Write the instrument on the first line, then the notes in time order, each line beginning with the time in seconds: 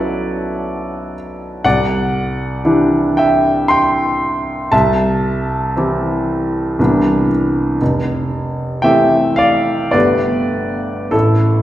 grand piano
Already playing: B1 F#3 C#4 E4 A4 B4 C#5 D5 E5 F#5
1.64 C2 D5 F#5
2.65 E3 D4 E4 G4
3.17 E5 G5
3.68 G5 C6
4.72 C2 E5 A5
5.76 E3 C4 E4 G4
6.79 C2 E3 B3 D4 E4
7.81 F1
8.82 E3 A3 C4 G4 E5 G5
9.36 D5 F5
9.91 G1 D3 A3 B3 G4 B4 D5
11.11 A1 E4 A4